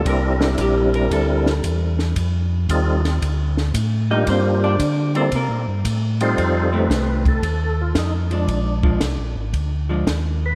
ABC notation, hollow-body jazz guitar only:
X:1
M:4/4
L:1/8
Q:"Swing" 1/4=114
K:Fmix
V:1 name="Hollow-body jazz guitar"
B D G B A4- | A2 z4 z [Ee] | [Cc] [Dd]2 [Cc] [B,B] z3 | z [E,A,C]3 z3 [F,_A,D]- |
[F,_A,D] [F,A,D] z3 [F,A,D] z2 |]